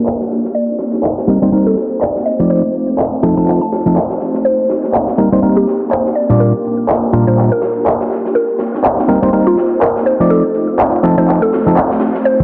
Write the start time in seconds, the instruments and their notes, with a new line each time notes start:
Already playing: string machine A#3 D4 F4 G4 D5, synth pluck A#4
0.06 clap, closed hi-hat
0.20 snare
0.29 snare, closed hi-hat
0.44 snare
0.54 string machine C4 D#4 G4 C5, synth pluck D5, closed hi-hat
0.69 closed hi-hat
0.78 snare, closed hi-hat
0.93 snare
1.03 clap, closed hi-hat
1.18 snare
1.27 synth stab G3 A#3 C4 D#4 A#4, closed hi-hat
1.42 synth stab G3 A#3 C4 D#4 C5
1.52 synth stab G3 A#3 C4 D#4 A#4, closed hi-hat
1.66 synth pluck A4
1.76 snare, closed hi-hat
1.90 closed hi-hat
2.01 synth pluck D5, clap, closed hi-hat
2.15 snare
2.25 string machine A3 D#4 F4, synth pluck D#5, closed hi-hat
2.39 synth stab F3 A3 C4 D#4 D5
2.49 synth pluck C5, closed hi-hat
2.74 closed hi-hat
2.98 clap, closed hi-hat
3.23 synth stab F3 A3 C4 D#4 A4, closed hi-hat
3.37 synth stab F3 A3 C4 D#4 A4, synth pluck A5, closed hi-hat
3.47 clap, closed hi-hat
3.61 synth pluck A5
3.72 snare, closed hi-hat
3.86 synth stab F3 A3 C4 D#4 A4
3.96 clap, closed hi-hat
4.10 snare
4.20 snare, closed hi-hat
4.34 snare
4.45 string machine A#3 G4, synth pluck C5, closed hi-hat
4.59 closed hi-hat
4.69 snare, closed hi-hat
4.84 snare
4.93 clap, closed hi-hat
5.08 snare
5.18 synth stab G3 A#3 C4 D#4 A#4, closed hi-hat
5.32 synth stab G3 A#3 C4 D#4 C5
5.42 synth stab G3 A#3 C4 D#4 A#4, closed hi-hat
5.57 synth pluck G4
5.67 snare, closed hi-hat
5.81 closed hi-hat
5.91 synth pluck C5, clap, closed hi-hat
6.05 snare
6.15 synth pluck D5, closed hi-hat
6.29 synth stab A#2 G3 A#3 D4 F4 D5
6.40 string machine D4 F4 D5, synth pluck A#4, closed hi-hat
6.65 closed hi-hat
6.88 clap, closed hi-hat
7.13 synth stab A#2 G3 A#3 D4 F4 A#4, closed hi-hat
7.27 synth stab A#2 G3 A#3 D4 F4 A#4, synth pluck C5, closed hi-hat
7.38 clap, closed hi-hat
7.52 synth pluck A#4
7.62 snare, closed hi-hat
7.85 clap, closed hi-hat
8.01 snare
8.10 snare, closed hi-hat
8.25 snare
8.35 string machine C4 D#4 C5, synth pluck A#4, closed hi-hat
8.48 closed hi-hat
8.59 snare, closed hi-hat
8.74 snare
8.84 clap, closed hi-hat
8.98 snare
9.08 synth stab G3 A#3 C4 D#4 A#4, closed hi-hat
9.22 synth stab G3 A#3 C4 D#4 C5
9.32 synth stab G3 A#3 C4 D#4 A#4, closed hi-hat
9.47 synth pluck F4
9.57 snare, closed hi-hat
9.72 closed hi-hat
9.81 synth pluck A#4, clap, closed hi-hat
9.96 snare
10.06 string machine A3 C4 F4 C5, synth pluck C5, closed hi-hat
10.20 synth stab F3 A3 C4 D#4 D5
10.30 synth pluck A4, closed hi-hat
10.54 closed hi-hat
10.79 clap, closed hi-hat
11.03 synth stab F3 A3 C4 D#4 A4, closed hi-hat
11.17 synth stab F3 A3 C4 D#4 A4, synth pluck C5, closed hi-hat
11.28 clap, closed hi-hat
11.42 synth pluck A4
11.52 snare, closed hi-hat
11.66 synth stab F3 A3 C4 D#4 A4
11.77 clap, closed hi-hat
11.91 snare
12.00 snare, closed hi-hat
12.14 snare
12.25 string machine A#3 D#4 G4, synth pluck C5, closed hi-hat
12.40 closed hi-hat, low conga